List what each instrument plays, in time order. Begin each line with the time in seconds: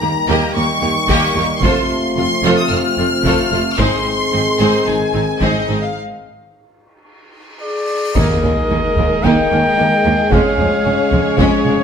Already playing: trombone section D#3 G3, french horn section A#3 D#4, violin section A#5
0.01 double bass section D#2, cello section D#2, viola section A#3 G4, violin section A#3 G4
0.28 double bass section D#2, cello section D#2, viola section A#3 G4, violin section G4 D#5
0.55 cello section D#2, double bass section D#2, viola section A#3 G4, violin section D#4 A#4 C#6
0.81 double bass section D#2, cello section D#2, violin section A#3 G4, viola section A#3 G4
1.09 double bass section D#2, cello section D#2, viola section A#3 G4, violin section G4 D#5, taiko
1.36 cello section D#2, double bass section D#2, viola section A#3 G4, violin section D#4 A#4
1.62 double bass section F1, cello section F2, trombone section C3 A3, viola section A3 F4, french horn section C4 F4, violin section A4 C5 C6, taiko
2.16 double bass section F1, cello section F2, viola section A3 F4, violin section C4 F4 C6
2.43 double bass section F1, cello section F2, viola section A3 F4, violin section A4 C5
2.58 violin section D#6
2.70 double bass section F1, cello section F2, viola section A3 F4, violin section F4 A4 F6
2.97 double bass section F1, cello section F2, viola section A3 F4, violin section C4 F4
3.24 double bass section F1, cello section F2, viola section A3 F4, violin section A4 C5, taiko
3.52 double bass section F1, cello section F2, viola section A3 F4, violin section F4 A4
3.78 double bass section G#1, cello section G#2, trombone section D#3 G#3, french horn section C4 G#4, viola section C4 D#4, violin section G#4 C5 C6, taiko
4.32 double bass section G#1, cello section G#2, viola section C4 D#4, violin section C4 D#4
4.58 double bass section G#1, cello section G#2, viola section C4 D#4, violin section G#4 C5
4.86 double bass section G#1, cello section G#2, viola section C4 D#4, violin section D#4 G#4 G#5
5.13 double bass section G#1, cello section G#2, viola section C4 D#4, violin section C4 D#4
5.41 double bass section G#1, cello section G#2, viola section C4 D#4, violin section G#4 C5 D#5, taiko
5.68 double bass section G#1, cello section G#2, viola section C4 D#4, violin section D#4 G#4
5.83 violin section F5
5.96 cymbal swell
7.61 flute G#4, trumpet D5
8.15 double bass section D#2, cello section D#2, trombone section D#3 G#3, timpani D#3, string section G#3 D#4 G#4 A#4, french horn section A#3 G#4, viola section A#3, violin section D#4 G#4, flute A#4, trumpet D#5, taiko, sub drop
8.42 double bass section D#2, cello section D#2, viola section A#3, violin section C#4, taiko low
8.70 double bass section D#2, cello section D#2, viola section A#3, violin section D#4
8.96 double bass section D#2, cello section D#2, violin section A#3, viola section A#3, taiko low
9.23 double bass section D#2, cello section D#2, viola section A#3, violin section D#4, flute D#5, trumpet G5, taiko
9.50 double bass section D#2, cello section D#2, viola section A#3, violin section C#4
9.77 double bass section D#2, cello section D#2, viola section A#3, violin section D#4
10.04 double bass section D#2, cello section D#2, violin section A#3, viola section A#3
10.30 double bass section F1, cello section F2, trombone section C#3, viola section G#3, violin section C#4, string section C#4 C#5, french horn section C#4, flute C#5, trumpet F5, taiko
10.58 double bass section F1, cello section F2, viola section G#3, violin section C4, taiko low
10.85 double bass section F1, cello section F2, viola section G#3, violin section C#4
11.11 double bass section F1, cello section F2, violin section G#3, viola section G#3, taiko low
11.38 double bass section F1, cello section F2, viola section G#3, violin section C#4, flute G#4, trumpet C#5, taiko
11.65 double bass section F1, cello section F2, viola section G#3, violin section C4